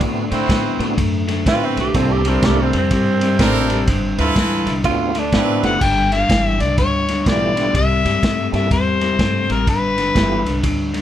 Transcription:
Already playing: tonewheel organ B3 C4 D4 E4 F#4
0.00 upright bass A2, clean electric guitar D3 A3, kick, ride
0.31 upright bass A2, clean electric guitar D3 A3, horn section C4 E4 F#4 C5, snare, ride
0.48 upright bass A2, clean electric guitar D3 B3, kick, snare, ride
0.79 upright bass A2, clean electric guitar D3 A3, tonewheel organ B3 C4 D4 E4 F#4, snare, ride
0.97 upright bass F#2, clean electric guitar D3 A3, kick, ride
1.28 clean electric guitar D3 A3, snare, ride
1.46 upright bass A2, clean electric guitar D3 B3, horn section C4 E4 F#4 B4, tenor saxophone F4, kick, snare, ride
1.65 tenor saxophone C4
1.76 upright bass B1, clean electric guitar D3 A3, tenor saxophone G4, snare, ride
1.94 upright bass C2, clean electric guitar C3 G3, tonewheel organ A#3 C4 D4 E4 A4, tenor saxophone C4, kick, snare, ride
2.12 tenor saxophone G4
2.25 clean electric guitar C3 G3, tenor saxophone C4, horn section D4 E4 A4 A#4, snare, ride
2.42 upright bass C2, clean electric guitar C3 A3, tonewheel organ A#3 C4 D4 E4 A4, tenor saxophone G4, kick, snare, ride
2.62 tenor saxophone C4
2.73 upright bass F2, clean electric guitar C3 G3, snare, ride
2.78 tenor saxophone C4
2.91 upright bass G2, clean electric guitar C3 G3, kick, snare, ride
3.21 clean electric guitar C3 G3, snare, ride
3.39 upright bass A1, clean electric guitar C3 A3, horn section D4 E4 A4 A#4, kick, snare, ride
3.70 clean electric guitar C3 G3, snare, ride
3.87 upright bass G1, clean electric guitar G2 D3, kick, snare, ride
4.18 upright bass D2, clean electric guitar G2 D3, horn section E4 F4 A4 B4, snare, ride
4.36 upright bass D2, clean electric guitar G2 E3, kick, snare, ride
4.66 upright bass C2, clean electric guitar G2 D3, snare, ride
4.84 upright bass D2, clean electric guitar D3 A3, tonewheel organ B3 C4 D4 E4 F#4, tenor saxophone F4, kick, ride
5.15 clean electric guitar D3 A3, snare, ride
5.19 tenor saxophone D4
5.32 upright bass A2, clean electric guitar D3 B3, horn section C4 E4 F#4 B4, kick, snare, ride
5.63 upright bass F#1, clean electric guitar D3 A3, tonewheel organ A3 B3 E4 F4 G4, harmonica F#5, snare, ride
5.81 upright bass G1, clean electric guitar G2 D3, harmonica G5, kick, snare, crash
6.12 clean electric guitar G2 D3, harmonica F5, snare, ride
6.29 upright bass G1, clean electric guitar G2 E3, kick, snare, ride
6.45 harmonica E5
6.60 upright bass C2, clean electric guitar G2 D3, harmonica D5, snare, ride
6.78 upright bass D2, clean electric guitar G2 D3, harmonica C#5, kick, snare, ride
7.08 clean electric guitar G2 D3, snare, ride
7.21 tonewheel organ A3 B3, harmonica C#5
7.26 upright bass B1, clean electric guitar G2 E3, tonewheel organ E4 F4 G4, harmonica D5, kick, snare, ride
7.57 clean electric guitar G2 D3, snare, ride
7.74 upright bass C2, clean electric guitar C3 G3, harmonica E5, kick, ride
8.05 upright bass G2, clean electric guitar C3 G3, snare, ride
8.23 upright bass G2, clean electric guitar C3 A3, kick, snare, ride
8.52 upright bass G2, clean electric guitar C3 G3, tonewheel organ A#3 C4 D4 E4 A4, harmonica E5, snare, ride
8.71 upright bass E2, clean electric guitar C3 G3, harmonica C5, kick, snare, ride
9.01 clean electric guitar C3 G3, snare, ride
9.19 upright bass G2, clean electric guitar C3 A3, kick, snare, ride
9.49 upright bass A1, clean electric guitar C3 G3, harmonica A#4, snare, ride
9.67 upright bass G1, clean electric guitar G2 D3, harmonica B4, kick, ride
9.97 clean electric guitar G2 D3, snare, ride
10.15 upright bass G1, clean electric guitar G2 E3, tonewheel organ A3 B3 E4 F4 G4, kick, snare, ride
10.46 upright bass C2, clean electric guitar G2 D3, snare, ride
10.63 upright bass D2, clean electric guitar G2 D3, kick, ride
10.93 clean electric guitar G2 D3, snare, ride

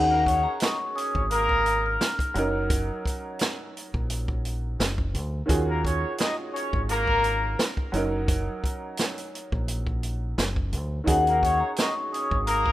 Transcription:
Already playing: fingered electric bass D#2, upright piano D#3 C#4 D#4 F#4 G#4, vibraphone F#5
0.10 trumpet section A#3 A#4
0.26 trumpet section C#4 C#5, kick, closed hi-hat
0.43 vibraphone A#5
0.60 trumpet section D#4 D#5, vibraphone C#6, snare, closed hi-hat
0.96 trumpet section C#4 C#5, vibraphone D#6, closed hi-hat
1.15 fingered electric bass G#1, kick
1.30 trumpet section A#3 A#4, vibraphone D#6, closed hi-hat
1.49 kick
1.66 closed hi-hat
1.86 vibraphone F6
2.01 snare, closed hi-hat
2.19 kick, closed hi-hat
2.34 fingered electric bass F#1, upright piano F#3 C#4 D#4, closed hi-hat
2.39 upright piano A#4
2.70 kick, closed hi-hat
3.05 kick, closed hi-hat
3.39 snare, closed hi-hat
3.77 closed hi-hat
3.94 fingered electric bass A#1, kick
4.10 closed hi-hat
4.28 kick
4.45 closed hi-hat
4.79 fingered electric bass F#1, snare, closed hi-hat
4.98 kick
5.14 fingered electric bass D2, closed hi-hat
5.46 fingered electric bass D#2, upright piano D#3 C#4 F4 F#4, kick, closed hi-hat
5.50 upright piano G#4
5.68 trumpet section A#3 A#4
5.84 trumpet section C#4 C#5, kick, closed hi-hat
6.18 trumpet section D#4 D#5, snare, closed hi-hat
6.53 trumpet section C#4 C#5, closed hi-hat
6.73 fingered electric bass G#1, kick
6.89 trumpet section A#3 A#4, closed hi-hat
7.07 kick
7.24 closed hi-hat
7.59 snare, closed hi-hat
7.77 kick
7.92 fingered electric bass F#1, upright piano F#3 C#4 D#4, closed hi-hat
7.97 upright piano A#4
8.28 kick, closed hi-hat
8.64 kick, closed hi-hat
8.97 snare, closed hi-hat
9.18 closed hi-hat
9.35 closed hi-hat
9.52 fingered electric bass A#1, kick
9.68 closed hi-hat
9.87 kick
10.03 closed hi-hat
10.38 fingered electric bass F#1, snare, closed hi-hat
10.56 kick
10.73 fingered electric bass D2, closed hi-hat
11.04 fingered electric bass D#2, upright piano D#3 C#4 D#4 F#4, vibraphone F#5, kick, closed hi-hat
11.08 upright piano G#4
11.27 trumpet section A#3 A#4, closed hi-hat
11.42 trumpet section C#4 C#5, kick, closed hi-hat
11.60 vibraphone A#5
11.76 trumpet section D#4 D#5, vibraphone C#6, snare, closed hi-hat
12.12 trumpet section C#4 C#5, vibraphone D#6, closed hi-hat
12.31 fingered electric bass G#1, kick
12.47 trumpet section A#3 A#4, vibraphone D#6, closed hi-hat
12.66 kick

